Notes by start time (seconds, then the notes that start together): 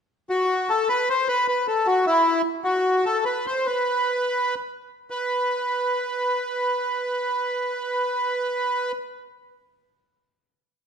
0.30 F#4
0.69 A4
0.89 B4
1.10 C5
1.28 B4
1.48 B4
1.67 A4
1.87 F#4
2.07 E4
2.64 F#4
3.05 A4
3.25 B4
3.46 C5
3.66 B4
5.10 B4